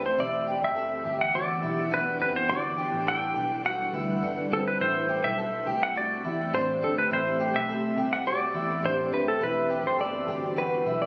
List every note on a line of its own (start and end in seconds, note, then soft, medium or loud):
0.00 0.17 F#1 medium
0.00 0.14 A3 medium
0.00 0.14 C4 medium
0.00 0.18 C4 medium
0.00 2.45 G4 medium
0.00 0.20 A5 soft
0.06 0.20 C5 medium
0.18 0.59 E1 loud
0.18 2.47 E3 medium
0.18 2.47 B3 medium
0.18 4.76 D4 medium
0.18 4.75 E4 medium
0.18 0.47 E4 loud
0.18 0.64 D5 loud
0.47 0.76 G4 medium
0.62 1.03 F#1 medium
0.62 1.17 E5 loud
0.76 1.04 A4 medium
1.05 1.60 G1 medium
1.05 1.33 G4 medium
1.21 1.35 F#5 loud
1.34 1.62 F#4 medium
1.34 1.88 D5 medium
1.62 1.90 B1 medium
1.62 1.91 E4 medium
1.90 2.19 E1 medium
1.90 2.20 D4 medium
1.90 2.20 B4 loud
1.90 2.73 F#5 medium
2.20 2.48 F#1 medium
2.20 2.49 C4 medium
2.20 2.34 B4 medium
2.36 2.50 C5 medium
2.49 2.90 G1 loud
2.49 4.77 G3 medium
2.49 2.77 F#4 medium
2.49 4.77 A4 medium
2.49 4.77 B4 medium
2.49 3.09 D5 loud
2.78 3.06 G4 medium
2.92 3.33 A1 medium
3.07 3.35 A4 medium
3.07 3.65 G5 loud
3.35 3.91 B1 medium
3.35 3.64 G4 medium
3.65 3.93 F#4 medium
3.65 4.54 F#5 loud
3.93 4.21 D2 medium
3.93 4.22 E4 medium
4.22 4.49 G1 medium
4.22 4.51 D4 medium
4.51 4.78 G1 medium
4.51 4.80 C4 medium
4.51 4.67 A4 medium
4.68 4.81 B4 medium
4.80 5.21 A1 loud
4.80 9.37 A3 medium
4.80 9.37 C4 medium
4.80 5.09 E4 medium
4.80 11.06 G4 medium
4.80 5.25 C5 loud
5.09 5.38 G4 medium
5.24 5.64 B1 medium
5.24 5.83 E5 medium
5.38 5.66 A4 medium
5.66 6.21 C2 medium
5.66 5.95 G4 medium
5.83 5.97 F#5 loud
5.96 6.24 F#4 medium
5.96 6.54 D5 medium
6.24 6.52 E2 medium
6.24 6.53 E4 medium
6.53 6.80 A1 medium
6.53 6.82 D4 medium
6.53 6.83 C5 medium
6.82 7.09 G1 medium
6.82 7.11 C4 medium
6.82 6.98 A4 medium
6.98 7.12 B4 medium
7.11 7.52 A1 loud
7.11 7.39 E4 medium
7.11 7.56 C5 loud
7.40 7.68 G4 medium
7.54 7.95 B1 medium
7.54 8.08 E5 loud
7.69 7.97 A4 medium
7.97 8.52 C2 medium
7.97 8.26 G4 medium
8.13 8.27 F#5 medium
8.26 8.54 F#4 medium
8.26 8.85 D5 medium
8.54 8.82 E2 medium
8.54 8.83 E4 medium
8.83 9.11 A1 medium
8.83 9.12 D4 medium
8.83 9.13 C5 medium
9.12 9.40 F#1 medium
9.12 9.41 C4 medium
9.12 9.28 B4 medium
9.12 9.66 E5 medium
9.28 9.42 A4 medium
9.41 9.82 E1 loud
9.41 11.06 E3 medium
9.41 11.06 B3 medium
9.41 11.06 D4 medium
9.41 9.70 E4 medium
9.41 11.06 F#4 medium
9.41 9.87 B4 loud
9.70 9.98 G4 medium
9.84 10.25 F#1 medium
9.84 10.00 C5 medium
9.99 10.28 A4 medium
9.99 10.59 D5 medium
10.27 10.82 G1 medium
10.27 10.57 G4 medium
10.57 10.86 F#4 medium
10.57 11.02 B4 medium
10.86 11.06 B1 medium
10.86 11.06 E4 medium
11.02 11.06 D5 medium